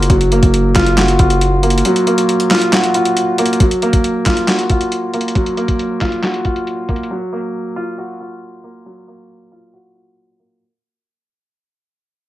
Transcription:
Already playing: F#3 A#3 F4 F#4
0.03 closed hi-hat
0.10 F#1 F#3, kick, closed hi-hat
0.21 closed hi-hat
0.32 A#3, closed hi-hat
0.43 F#1, kick, closed hi-hat
0.54 closed hi-hat
0.75 F#1 F4, kick, snare, clap, closed hi-hat
0.86 closed hi-hat
0.97 F#4, snare, clap, closed hi-hat
1.08 closed hi-hat
1.19 F#1 F4, kick, closed hi-hat
1.30 closed hi-hat
1.41 closed hi-hat
1.63 A#3, closed hi-hat
1.70 closed hi-hat
1.78 closed hi-hat
1.85 F#3, closed hi-hat
1.96 closed hi-hat
2.07 A#3, closed hi-hat
2.18 closed hi-hat
2.29 closed hi-hat
2.40 closed hi-hat
2.51 F4, snare, clap, open hi-hat
2.62 closed hi-hat
2.73 F#4, snare, clap, closed hi-hat
2.84 closed hi-hat
2.94 F4, closed hi-hat
3.05 closed hi-hat
3.17 closed hi-hat
3.38 A#3, closed hi-hat
3.46 closed hi-hat
3.53 closed hi-hat
3.60 F#3, kick, closed hi-hat
3.71 closed hi-hat
3.82 A#3, closed hi-hat
3.93 kick, closed hi-hat
4.04 closed hi-hat
4.26 F4, kick, snare, clap, closed hi-hat
4.37 closed hi-hat
4.48 F#4, snare, clap, closed hi-hat
4.59 closed hi-hat
4.70 F4, kick, closed hi-hat
4.81 closed hi-hat
4.92 closed hi-hat
5.14 A#3, closed hi-hat
5.21 closed hi-hat
5.28 closed hi-hat
5.35 F#3, kick, closed hi-hat
5.46 closed hi-hat
5.57 A#3, closed hi-hat
5.68 kick, closed hi-hat
5.79 closed hi-hat
6.01 F4, kick, snare, clap, closed hi-hat
6.12 closed hi-hat
6.23 F#4, snare, clap, closed hi-hat
6.34 closed hi-hat
6.45 F4, kick, closed hi-hat
6.56 closed hi-hat
6.67 closed hi-hat
6.89 A#3, kick, closed hi-hat
6.96 closed hi-hat
7.03 closed hi-hat
7.11 F#3
7.33 A#3
7.76 F4
7.98 F#4
8.20 F4
8.64 A#3
8.86 F#3
9.08 A#3
9.52 F4
9.73 F#4
9.95 F4
10.39 A#3

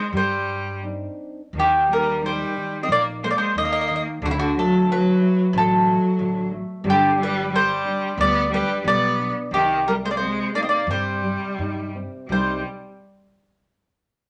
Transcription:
Already playing: G#3 C5
0.13 G2 G3
0.17 C5
0.83 C4 D4 D#4
1.53 D#2 D#3
1.59 G4
1.88 G3 A#3
1.93 A#4
2.21 G3 D#4
2.26 C5
2.56 D#3
2.82 C4 D#5
2.88 A#1 A#3 D#4
2.92 D5
3.22 G#3 A#3 C5
3.27 A#3 D5
3.35 G#3 C5
3.55 D#2 A#3 D#4 D#5
3.65 D#5
3.72 D#5
3.81 D#5
3.88 D#3 D#5
3.96 D#5
4.22 D2 D3 F#4
4.29 C3 E4
4.36 D3 F#4
4.55 F#3 A3 A4
4.88 D3 F#3 B4
5.20 A3
5.52 A1 D3 F#3
5.58 A4
5.86 A3
6.19 A1 D3
6.51 A3
6.84 G1 D3 G3
6.90 G4
7.17 G3 D4
7.23 B4
7.50 G3
7.56 C5
7.85 D4
8.18 D2 G3 B3 D5
8.51 G3 D4 B4
8.84 B1 G3 B3 D5
9.19 D4
9.51 C2 C3 D#3 G4
9.87 G3 A#4
10.04 G#3 C5
10.11 A#3 D5
10.17 G#3 C4 C5
10.55 A#3 D#4 D5
10.63 C4 D#5
10.68 A#3 D5
10.87 G2 G3 C4 C5
11.23 G3
11.59 G2 D#4
11.95 C4
12.28 C2 C3 G3 C4 D#4 G4
12.32 C5

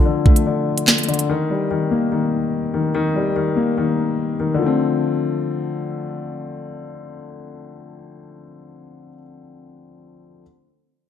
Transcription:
Already playing: D3 F3 A3
0.05 D3
0.26 A3, kick
0.36 closed hi-hat
0.47 D3
0.78 closed hi-hat
0.87 snare, clap
0.98 closed hi-hat
1.03 closed hi-hat
1.08 D3, closed hi-hat
1.14 closed hi-hat
1.19 closed hi-hat
1.29 D#3
1.50 G3
1.71 D#3
1.91 A#3
2.12 D#3
2.74 D#3
2.94 D#3
3.15 G3
3.36 D#3
3.56 A#3
3.78 D#3
4.40 D#3
4.54 D3 F3
4.62 A3 C4

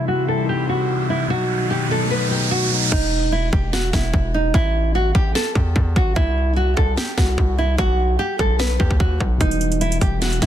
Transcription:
Already playing: C3 E3 G3 C4 E4, riser
0.08 F#4
0.26 C3 G3 A4
0.31 E4
0.36 C3 G3
0.42 D#4
0.49 G4
0.66 C3 G3 F#4
0.72 E4
1.10 E4
1.27 B2 D#3 F#3 B3 F#4
1.33 D#4
1.70 G4
1.88 B2 F#3 A4
1.94 D#4
1.98 B2 F#3
2.04 A3
2.10 B4
2.28 B2 F#3 G4
2.34 D#4
2.51 F#4
2.69 B2 F#3
2.75 D#4
2.92 E1 D#4, kick, crash
3.32 E4
3.53 E1 G4, kick
3.73 F#4, snare
3.93 E1 E4, kick, snare
4.14 E1, kick
4.34 D#4
4.54 A1 E4, kick
4.95 F#4
5.15 A1 G4, kick
5.35 A4, snare
5.55 E2 G4, kick
5.76 E2, kick
5.96 A1 F#4, kick
6.16 C2 E4, kick
6.56 F#4
6.77 C2 A4, kick
6.97 G4, snare
7.18 C2 F#4, kick, snare
7.38 C2, kick
7.58 E4
7.78 B1 F#4, kick
8.19 G4
8.39 B1 A4, kick
8.59 B4, snare
8.80 D#2 G4, kick
8.91 kick
9.00 F#4, kick
9.20 B1, kick
9.38 E1 B2 G3 D#4, kick, closed hi-hat
9.44 E3
9.51 closed hi-hat
9.61 closed hi-hat
9.72 closed hi-hat
9.81 E4, closed hi-hat
9.92 closed hi-hat
10.01 E1 G4, kick, closed hi-hat
10.22 F#4, snare, closed hi-hat
10.32 closed hi-hat
10.39 E1 B2 G3 E4, kick, snare, closed hi-hat

